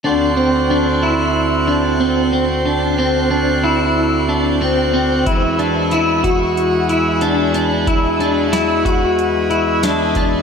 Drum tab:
HH |--------|--------|xxxxxxxx|xxxxxxxx|
SD |--------|--------|--------|--o---o-|
BD |--------|--------|o--o----|o--o---o|